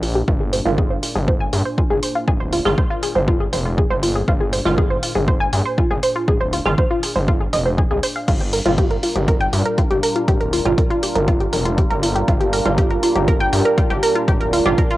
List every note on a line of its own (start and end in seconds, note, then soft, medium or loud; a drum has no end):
0.00 0.23 A#1 medium
0.00 8.27 A#2 medium
0.00 8.27 D4 medium
0.00 0.06 F4 medium
0.00 open hi-hat loud
0.15 0.21 G4 medium
0.28 0.60 G1 loud
0.28 0.34 F4 loud
0.28 kick loud
0.40 0.46 G#4 medium
0.53 0.59 C5 medium
0.53 open hi-hat loud
0.65 0.98 G1 loud
0.65 2.63 D#3 medium
0.65 2.63 G#3 medium
0.65 0.71 F4 medium
0.65 2.62 F4 loud
0.78 0.87 G#4 loud
0.78 kick loud
0.90 0.96 C5 medium
1.03 1.06 F4 medium
1.03 open hi-hat loud
1.15 1.48 G1 medium
1.15 1.19 G#4 medium
1.28 1.34 C5 loud
1.28 kick loud
1.40 1.46 G#5 loud
1.53 1.62 G2 medium
1.53 1.59 G#4 medium
1.53 open hi-hat loud
1.65 1.71 C5 medium
1.78 1.87 F4 medium
1.78 kick loud
1.90 2.00 G1 medium
1.90 1.99 G#4 loud
2.03 2.06 C5 medium
2.03 open hi-hat loud
2.15 2.24 F4 medium
2.28 2.60 D1 medium
2.28 2.31 G#4 loud
2.28 kick loud
2.40 2.44 C5 medium
2.53 2.59 F4 medium
2.53 open hi-hat loud
2.65 2.75 G1 medium
2.65 4.62 D#3 medium
2.65 4.62 G#3 medium
2.65 4.62 F4 loud
2.65 2.71 G#4 medium
2.78 2.87 C5 medium
2.78 kick loud
2.90 2.99 F4 loud
3.03 3.06 G#4 medium
3.03 open hi-hat loud
3.15 3.48 G1 medium
3.15 3.24 C5 medium
3.28 3.31 F4 loud
3.28 kick loud
3.40 3.44 G#4 medium
3.53 3.85 F1 loud
3.53 3.59 C5 medium
3.53 open hi-hat loud
3.65 3.71 F4 medium
3.78 3.87 G#4 medium
3.78 kick loud
3.90 4.23 G1 loud
3.90 3.94 C5 loud
4.03 4.06 F4 medium
4.03 open hi-hat loud
4.15 4.21 G#4 medium
4.28 4.60 G1 loud
4.28 4.34 F4 loud
4.28 kick loud
4.41 4.46 G#4 medium
4.53 4.59 C5 medium
4.53 open hi-hat loud
4.65 4.98 G1 loud
4.65 6.63 D#3 medium
4.65 6.63 G#3 medium
4.65 4.71 F4 medium
4.65 6.63 F4 loud
4.78 4.87 G#4 loud
4.78 kick loud
4.90 4.96 C5 medium
5.03 5.07 F4 medium
5.03 open hi-hat loud
5.15 5.48 G1 medium
5.15 5.19 G#4 medium
5.28 5.34 C5 loud
5.28 kick loud
5.40 5.46 G#5 loud
5.53 5.62 G2 loud
5.53 5.59 G#4 medium
5.53 open hi-hat loud
5.66 5.71 C5 medium
5.78 5.87 F4 medium
5.78 kick loud
5.90 6.00 G1 medium
5.90 5.99 G#4 loud
6.03 6.07 C5 medium
6.03 open hi-hat loud
6.16 6.24 F4 medium
6.28 6.60 D1 medium
6.28 6.32 G#4 loud
6.28 kick loud
6.41 6.44 C5 medium
6.53 6.59 F4 medium
6.53 open hi-hat medium
6.66 6.75 G1 medium
6.66 8.26 D#3 loud
6.66 8.26 G#3 medium
6.66 8.26 F4 loud
6.66 6.71 G#4 medium
6.78 6.87 C5 medium
6.78 kick loud
6.91 6.99 F4 loud
7.03 7.07 G#4 medium
7.03 open hi-hat loud
7.16 7.48 G1 medium
7.16 7.24 C5 medium
7.28 7.32 F4 loud
7.28 kick loud
7.41 7.44 G#4 medium
7.53 7.85 F1 loud
7.53 7.59 D#5 loud
7.53 open hi-hat loud
7.66 7.71 C5 medium
7.78 7.87 G#4 loud
7.78 kick loud
7.91 8.00 C2 medium
7.91 7.99 G#4 loud
8.03 8.12 C5 loud
8.03 open hi-hat loud
8.16 8.19 F5 medium
8.28 8.60 G1 loud
8.28 14.97 A#2 medium
8.28 14.97 G3 medium
8.28 14.97 D4 medium
8.28 8.34 F4 loud
8.28 14.97 F4 medium
8.28 14.97 A#4 medium
8.28 kick loud
8.28 closed hi-hat soft
8.28 crash medium
8.41 8.46 G4 medium
8.41 closed hi-hat soft
8.53 8.59 A#4 medium
8.53 open hi-hat loud
8.66 8.98 G1 medium
8.66 10.63 A#2 loud
8.66 10.63 G3 medium
8.66 8.71 F4 medium
8.66 10.63 F4 loud
8.66 closed hi-hat soft
8.78 8.87 G4 loud
8.78 kick loud
8.78 closed hi-hat soft
8.91 8.96 A#4 medium
8.91 closed hi-hat soft
9.03 9.07 F4 medium
9.03 open hi-hat loud
9.16 9.48 G1 medium
9.16 9.19 G4 medium
9.16 closed hi-hat soft
9.28 9.34 A#4 loud
9.28 kick loud
9.28 closed hi-hat soft
9.41 9.46 G5 loud
9.41 closed hi-hat soft
9.53 9.62 G2 loud
9.53 9.59 G4 medium
9.53 open hi-hat loud
9.66 9.71 A#4 medium
9.66 closed hi-hat soft
9.78 9.87 F4 medium
9.78 kick loud
9.78 closed hi-hat soft
9.90 10.00 G1 medium
9.90 9.99 G4 loud
9.90 closed hi-hat soft
10.03 10.07 A#4 medium
10.03 open hi-hat loud
10.16 10.24 F4 medium
10.16 closed hi-hat soft
10.28 10.60 D1 medium
10.28 10.32 G4 loud
10.28 kick loud
10.28 closed hi-hat soft
10.41 10.44 A#4 medium
10.41 closed hi-hat soft
10.53 10.59 F4 medium
10.53 open hi-hat loud
10.65 10.75 G1 medium
10.65 12.63 A#2 medium
10.65 12.63 G3 medium
10.65 12.63 F4 loud
10.65 10.71 G4 medium
10.65 closed hi-hat soft
10.78 10.87 A#4 medium
10.78 kick loud
10.78 closed hi-hat soft
10.90 10.99 F4 loud
10.90 closed hi-hat soft
11.03 11.07 G4 medium
11.03 open hi-hat loud
11.16 11.48 G1 medium
11.16 11.24 A#4 medium
11.16 closed hi-hat soft
11.28 11.32 F4 loud
11.28 kick loud
11.28 closed hi-hat soft
11.41 11.44 G4 medium
11.41 closed hi-hat soft
11.53 11.85 F1 medium
11.53 11.59 A#4 medium
11.53 open hi-hat loud
11.65 11.71 F4 medium
11.65 closed hi-hat soft
11.78 11.87 G4 medium
11.78 kick loud
11.78 closed hi-hat soft
11.90 12.23 G1 loud
11.90 11.94 A#4 loud
11.90 closed hi-hat soft
12.03 12.07 F4 medium
12.03 open hi-hat loud
12.15 12.21 G4 medium
12.15 closed hi-hat soft
12.28 12.60 G1 medium
12.28 12.34 F4 loud
12.28 kick loud
12.28 closed hi-hat soft
12.40 12.46 G4 medium
12.40 closed hi-hat soft
12.53 12.59 A#4 medium
12.53 open hi-hat loud
12.65 12.98 G1 loud
12.65 14.63 A#2 medium
12.65 14.63 G3 medium
12.65 12.71 F4 medium
12.65 14.63 F4 loud
12.65 closed hi-hat soft
12.78 12.87 G4 loud
12.78 kick loud
12.78 closed hi-hat soft
12.91 12.96 A#4 medium
12.91 closed hi-hat soft
13.03 13.07 F4 medium
13.03 open hi-hat loud
13.15 13.48 G1 medium
13.15 13.19 G4 medium
13.15 closed hi-hat soft
13.28 13.34 A#4 loud
13.28 kick loud
13.28 closed hi-hat soft
13.40 13.46 G5 loud
13.40 closed hi-hat soft
13.53 13.62 G2 loud
13.53 13.59 G4 medium
13.53 open hi-hat loud
13.65 13.71 A#4 medium
13.65 closed hi-hat soft
13.78 13.87 F4 medium
13.78 kick loud
13.78 closed hi-hat soft
13.90 14.00 G1 medium
13.90 13.99 G4 loud
13.90 closed hi-hat soft
14.03 14.07 A#4 medium
14.03 open hi-hat loud
14.15 14.24 F4 medium
14.15 closed hi-hat soft
14.28 14.60 D1 medium
14.28 14.31 G4 loud
14.28 kick loud
14.28 closed hi-hat soft
14.41 14.44 A#4 medium
14.41 closed hi-hat soft
14.53 14.59 F4 medium
14.53 open hi-hat loud
14.65 14.75 G1 medium
14.65 14.97 A#2 medium
14.65 14.97 G3 medium
14.65 14.97 F4 loud
14.65 14.71 G4 medium
14.65 closed hi-hat soft
14.78 14.87 A#4 medium
14.78 kick loud
14.78 closed hi-hat soft
14.90 14.97 F4 loud
14.90 closed hi-hat soft